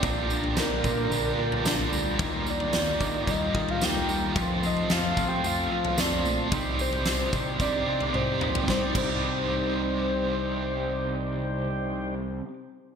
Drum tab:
CC |----------------|----------------|----------------|----------------|
TB |x-x-x-x-x---x-x-|x-x-x-x-x---x-x-|x-x-x-x-x---x-x-|x-x-x-x-x-------|
SD |----o-------o---|----o-------o---|----o-------o---|----o-----------|
T1 |----------------|----------------|----------------|------------o---|
T2 |----------------|----------------|----------------|--------------o-|
FT |o--o--o----o-o--|o--o--o----o-o--|o--o--o----o-o--|o--o--o----o---o|
BD |o-----o---------|o-----o-o-o-----|o-----o---------|o-----o-o-------|

CC |--x-------------|----------------|
TB |----------------|----------------|
SD |o---------------|----------------|
T1 |----------------|----------------|
T2 |----------------|----------------|
FT |----------------|----------------|
BD |o-o-------------|----------------|